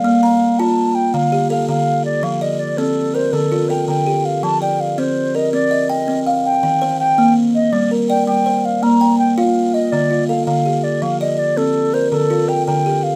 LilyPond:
<<
  \new Staff \with { instrumentName = "Flute" } { \time 12/8 \key f \mixolydian \tempo 4. = 109 f''4. a''4 g''8 f''4 f''8 f''4 d''8 | f''8 ees''8 d''8 a'4 c''8 a'4 g''8 g''4 f''8 | a''8 g''8 f''8 c''4 ees''8 d''4 ees''4. g''8~ | g''4 g''4 r8 ees''8 d''8 r8 g''8 g''4 f''8 |
bes''4 g''8 f''4 ees''8 d''4 f''8 f''4 d''8 | f''8 ees''8 d''8 a'4 c''8 a'4 g''8 g''4 f''8 | }
  \new Staff \with { instrumentName = "Kalimba" } { \time 12/8 \key f \mixolydian r8 bes''4. r4. g'8 a'4. r8 | r8 d''4. r8 bes'4 f'8 a'4 g'4~ | g'8 d''4. r8 bes'4 ees''8 g''4 f''4~ | f''8 c''4. r4. bes'8 d''4 c''4~ |
c''8 g''4. r8 ees''4 f'8 a'4 g'4~ | g'8 d''4. r8 bes'4 f'8 a'4 g'4 | }
  \new Staff \with { instrumentName = "Kalimba" } { \clef bass \time 12/8 \key f \mixolydian bes4 r8 f'4 r8 d4 r8 d4 r8 | f4 r8 c'4 r8 d4 r8 d4 r8 | f4 r8 c'4 r8 c'4 r8 c'4 r8 | ees4 r8 bes4 r8 g4 r8 g4 r8 |
bes4 r8 f'4 r8 d4 r8 d4 r8 | f4 r8 c'4 r8 d4 r8 d4 r8 | }
>>